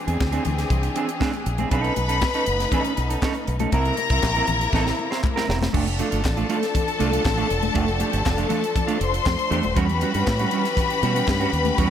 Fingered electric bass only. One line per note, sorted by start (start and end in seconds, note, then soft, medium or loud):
0.08 0.16 E2 loud
0.20 0.38 D2 loud
0.46 0.63 D2 medium
0.70 0.88 C2 medium
1.46 1.64 A#1 medium
1.72 1.89 B1 loud
1.97 2.23 B1 loud
2.47 2.65 F#1 medium
2.98 3.15 B1 medium
3.48 3.65 B1 loud
3.73 3.90 C2 loud
4.10 4.19 C2 medium
4.23 4.41 A#1 loud
4.48 4.65 A#1 medium
4.73 4.91 A1 medium
5.49 5.66 E1 medium
5.74 6.00 F1 loud
6.12 6.21 G1 medium
6.25 6.42 A1 medium
7.00 7.18 C2 medium
7.25 7.43 A1 medium
7.51 7.68 E1 loud
7.76 8.02 F1 loud
8.14 8.22 G1 loud
8.26 8.43 F1 loud
9.01 9.18 F1 medium
9.26 9.35 F2 loud
9.51 9.60 E2 loud
9.64 9.73 D#1 loud
9.76 10.03 E2 loud
10.15 10.23 G2 medium
10.27 10.44 A2 loud
11.03 11.20 B2 medium
11.28 11.45 G2 loud
11.53 11.70 D#2 medium
11.78 11.90 E2 loud